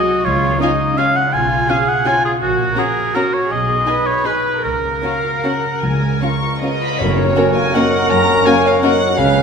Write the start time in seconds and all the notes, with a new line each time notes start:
Already playing: C3 F#3 G#3 D#4 F#4 G#4 D#5
0.09 F#4
0.25 C#2 C#3 F4 C#5
0.43 G#3
0.60 C#4 D#4 F4 D#5 G#5
0.80 F4
0.98 C#4 F4 G#4 F5 G#5
1.16 F4 F#5
1.33 B1 B2 F4 G#5
1.51 B3
1.69 C#4 F4 G#4 F5 G#5
1.87 F4 F#5
2.05 C#4 F4 C#5 G#5
2.24 F4 G#4
2.41 A#1 A#2 F#4
2.58 A#3
2.76 C#4 F#4 G#4 A#4 A#5
2.97 F#4
3.14 C#4 F#4 A#4 C#5 A#5
3.33 F#4 C#5
3.50 B1 B2 G#4 D#5
3.68 B3
3.86 D#4 G#4 B4 G#5
4.06 G#4 C#5
4.25 D#4 G#4 B4 G#5
4.46 G#4
4.63 C#2 C#3 A#4
4.83 A#3
5.02 C#4 F#4 F5
5.24 F#4
5.44 C#4 F#4 A#4 F#5
5.64 F#4
5.82 C#2 C#3 G#5
6.02 G#3
6.21 C#4 F4 C#6
6.42 F4
6.61 C#4 F4 G#4 B4 D#5
6.82 F4 B5
7.00 F#1 F#2 F#3 F#4 A#4 C#5, tam-tam
7.18 A#3
7.36 A#3 C#4 F#4 A#4
7.55 F#4 F5 G#5
7.74 A#3 C#4 D#4 F#4 A#4 C#5 F#5
7.93 F#4
8.10 F#1 F#2 C#4 F#5 A#5
8.28 A#3
8.45 A#3 C#4 F#4 A#4 F5 G#5
8.65 F#4 C#5 F5
8.83 A#3 C#4 D#4 F#4 A#4 F#5
9.00 F#4
9.16 C#2 C#3 G#3 C#4 G#4 B4 C#5 F5
9.33 G#3